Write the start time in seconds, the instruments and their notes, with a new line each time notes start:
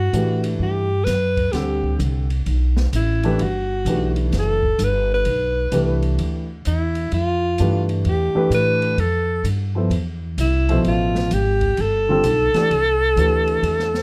Already playing: upright bass G2, alto saxophone F#4
0.13 upright bass A2, grand piano E3 A3 D4 G4 B4, hi-hat pedal, ride
0.44 ride
0.59 upright bass G2, alto saxophone G4
1.04 upright bass F#2, alto saxophone B4, snare, hi-hat pedal, ride
1.37 kick, ride
1.52 upright bass D2, grand piano D3 G3 C4 A4 F#5, alto saxophone G4, snare, ride
1.84 kick
1.99 upright bass C2, hi-hat pedal, ride
2.30 ride
2.46 upright bass B1, ride
2.77 snare
2.92 upright bass A1, alto saxophone E4, hi-hat pedal, ride
3.23 grand piano E3 A3 D4 G4 B4, ride
3.39 upright bass G1, alto saxophone F#4, ride
3.85 upright bass B1, grand piano E3 A3 D4 G4 B4, hi-hat pedal, ride
4.16 ride
4.32 upright bass F#1, snare, ride
4.39 alto saxophone A4
4.63 kick
4.79 upright bass G1, hi-hat pedal, ride
4.83 alto saxophone B4
5.14 alto saxophone B4
5.25 upright bass B1, ride
5.72 upright bass C2, grand piano E3 A3 D4 G4 B4, hi-hat pedal, ride
6.02 ride
6.19 upright bass D2, ride
6.65 upright bass E2, alto saxophone E4, hi-hat pedal, ride
6.95 ride
7.12 upright bass F2, alto saxophone F4, ride
7.58 upright bass G2, grand piano E3 A3 D4 G4 B4, hi-hat pedal, ride
7.89 ride
8.05 upright bass E2, ride
8.09 alto saxophone G4
8.35 grand piano E3 A3 D4 G4 B4, muted upright bass stroke
8.50 upright bass A2, hi-hat pedal, ride
8.54 alto saxophone B4
8.82 ride
8.97 upright bass F2, alto saxophone A4, ride
9.44 upright bass G2, hi-hat pedal, ride
9.75 grand piano F3 B3 E4 A4 C5
9.90 upright bass E2, ride
10.38 upright bass C2, alto saxophone E4, hi-hat pedal, ride
10.69 grand piano B2 F3 A4 C5 E5, ride
10.84 upright bass A1, alto saxophone F4, ride
11.15 snare
11.31 upright bass G#1, alto saxophone G4, hi-hat pedal, ride
11.61 kick, ride
11.77 upright bass G1, ride
11.81 alto saxophone A4
12.09 grand piano D3 G3 C4 F4 A4
12.24 upright bass B1, hi-hat pedal, ride
12.54 grand piano E3 A3 D4 G4 D5, muted upright bass stroke, snare, ride
12.70 upright bass C2, ride
13.16 upright bass D2, grand piano E3 A3 D4 G4 B4, hi-hat pedal, ride
13.47 ride
13.62 upright bass E2, ride
13.79 snare
13.94 snare